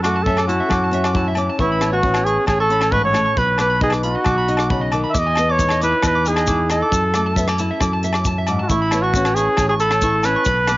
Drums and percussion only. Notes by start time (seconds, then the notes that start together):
0.04 cross-stick, closed hi-hat, low agogo
0.26 kick
0.37 cross-stick, low agogo
0.49 closed hi-hat
0.70 kick, cross-stick, low agogo
0.93 closed hi-hat
1.04 cross-stick, low agogo
1.15 kick
1.35 closed hi-hat, low agogo
1.59 kick
1.81 cross-stick, closed hi-hat, low agogo
2.03 kick
2.14 cross-stick, low agogo
2.26 closed hi-hat
2.47 kick, cross-stick, low agogo
2.70 closed hi-hat
2.81 cross-stick, low agogo
2.92 kick
3.14 cross-stick, closed hi-hat, low agogo
3.37 kick
3.58 cross-stick, closed hi-hat, low agogo
3.81 kick
3.90 cross-stick, low agogo
4.03 closed hi-hat
4.24 kick, cross-stick, low agogo
4.48 closed hi-hat
4.57 cross-stick, low agogo
4.70 kick
4.92 closed hi-hat, low agogo
5.15 kick, maracas
5.35 cross-stick, closed hi-hat, low agogo, maracas
5.59 kick, maracas
5.69 cross-stick, low agogo
5.82 closed hi-hat, maracas
6.03 kick, cross-stick, low agogo, maracas
6.26 closed hi-hat, maracas
6.36 cross-stick, low agogo
6.47 kick, maracas
6.70 cross-stick, closed hi-hat, low agogo, maracas
6.92 kick, maracas
7.14 cross-stick, closed hi-hat, low agogo, maracas
7.36 kick, maracas
7.48 cross-stick, low agogo
7.58 closed hi-hat, maracas
7.80 kick, cross-stick, low agogo, maracas
8.03 closed hi-hat, maracas
8.13 cross-stick, low agogo
8.25 kick, maracas
8.47 closed hi-hat, low agogo, maracas
8.70 kick, maracas
8.91 cross-stick, closed hi-hat, low agogo, maracas
9.14 kick, maracas
9.25 cross-stick, low agogo
9.36 closed hi-hat, maracas
9.57 kick, cross-stick, low agogo, maracas
9.80 closed hi-hat, maracas
9.91 cross-stick, low agogo
10.02 kick, maracas
10.23 cross-stick, closed hi-hat, low agogo, maracas
10.45 kick, maracas
10.67 cross-stick, closed hi-hat, low agogo, maracas